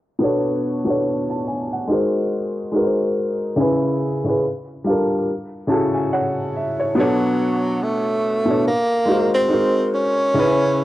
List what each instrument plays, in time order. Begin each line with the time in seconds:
0.19 upright piano B2 B3 D4 A4
0.24 upright piano C#5
0.85 upright piano B2 B3 D4 A4
0.90 upright piano C#5
1.30 upright piano A5
1.48 upright piano G#5
1.73 upright piano F#5
1.88 upright piano G#3 D#4 F#4 A#4
1.93 upright piano C5
2.72 upright piano G#3 D#4 F#4 A#4
2.77 upright piano B4
2.83 upright piano C5
3.56 upright piano C#3 C#4 E4 G#4
3.61 upright piano B4
4.24 upright piano C#3 C#4 E4 G#4
4.29 upright piano B4
4.84 upright piano G3 D4 F4 A4
4.89 upright piano A#4
5.67 upright piano C#3 C#4 E4 F#4 G#4 A5
5.72 upright piano A4
5.94 upright piano G#5
6.13 upright piano C#5 F#5
6.56 upright piano E5
6.80 upright piano C#5
6.95 upright piano B2 B3 D4 A4, tenor saxophone F#3
7.00 upright piano C#5
7.83 tenor saxophone A3
8.46 upright piano B2 B3 D4 A4
8.50 upright piano C#5
8.67 tenor saxophone A#3
9.05 upright piano G#3 D#4 F#4 A#4
9.10 upright piano C5
9.34 tenor saxophone C4
9.48 upright piano G#3 D#4 F#4 A#4
9.53 upright piano C5
9.94 tenor saxophone C#4
10.34 upright piano C#3 C#4 D#4 G#4
10.39 upright piano B4
10.43 upright piano E4